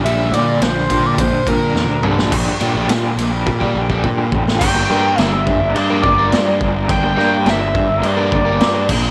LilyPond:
<<
  \new Staff \with { instrumentName = "Analog synth lead" } { \time 4/4 \key g \dorian \tempo 4 = 105 e''8 d''8 c''8. d''16 c''8 bes'4 r8 | r1 | g''4 e''4 d''8 d''4 r8 | g''4 e''4 d''8 d''4 r8 | }
  \new Staff \with { instrumentName = "Overdriven electric guitar" } { \time 4/4 \key g \dorian bes,8 g8 d'8 g'8 d'8 g8 d'8 a'8 | <bes, d g d' g'>8. <g d' g'>16 <bes, d g d' g'>16 <g d' g'>8 <g d' g'>8 <g d' g'>16 <d g d' g'>8 <bes, d g d' g'>16 <g d' g'>16 <d g d' g'>16 <g d' g'>16 | <g, d g bes d' bes'>8 <g bes d' bes'>8 <g, d g bes d' bes'>16 <g bes d' bes'>8 <g bes d' bes'>8 <g bes d' bes'>8. <g, d g bes d' bes'>16 <g bes d' bes'>16 <g bes d' bes'>16 <g bes d' bes'>16 | <g, d g bes d' bes'>8 <g bes d' bes'>8 <g, d g bes d' bes'>16 <g bes d' bes'>8 <g bes d' bes'>8 <g bes d' bes'>8. <g, d g bes d' bes'>16 <g bes d' bes'>16 <bes, d f bes d' bes'>16 <f bes d' bes'>16 | }
  \new Staff \with { instrumentName = "Tonewheel organ" } { \time 4/4 \key g \dorian r1 | r1 | d'1~ | d'1 | }
  \new Staff \with { instrumentName = "Tonewheel organ" } { \time 4/4 \key g \dorian r1 | r1 | <g bes>1~ | <g bes>2.~ <g bes>8 <bes c'>8 | }
  \new Staff \with { instrumentName = "Overdriven electric guitar" } { \clef bass \time 4/4 \key g \dorian <bes, d g>8 <bes, d>8 <bes, d>8 <bes, d>8 <bes, d>8 <bes, d>8 <bes, d>8 <bes, d g>8 | r8 <d g d' g'>16 <d g d' g'>16 r4 r16 <d g d' g'>16 r16 <d g d' g'>16 r4 | r8 <g bes d' bes'>16 r16 <g bes d' bes'>16 r4 <g bes d' bes'>16 r16 <g bes d' bes'>16 r4 | r8 <g bes d' bes'>16 r16 <g bes d' bes'>16 r4 <g bes d' bes'>16 r16 <g bes d' bes'>16 r4 | }
  \new Staff \with { instrumentName = "Picked electric bass" } { \clef bass \time 4/4 \key g \dorian bes,,8 bes,8 bes,,8 bes,8 bes,,16 r16 bes,8 e,16 d,16 c,16 bes,,16 | bes,,16 r16 bes,16 bes,,16 bes,8 bes,,8 bes,8 bes,,8 bes,8 a,,8 | g,,8 g,8 g,,8 g,16 g,,16 g,8 g,,8 g,8 g,,8 | g,,8 g,8 g,,8 g,16 g,,16 g,8 g,,8 g,8 bes,,8 | }
  \new DrumStaff \with { instrumentName = "Drums" } \drummode { \time 4/4 cymr8 cymr8 <cymr sn>16 sn16 <bd cymr>8 <bd cymr>8 <bd cymr>8 sn8 toml16 sn16 | <cymc bd>8 cymr8 <cymr sn>8 <cymr sn>8 bd16 bd8 bd16 bd8 bd16 sn16 | <cymc bd>8 sn8 <cymc sn>8 bd8 cymc8 bd8 <cymc sn>8 bd8 | <cymc bd>8 sn8 <cymc sn>8 bd8 cymc8 bd8 <cymc sn>8 <cymc bd>8 | }
>>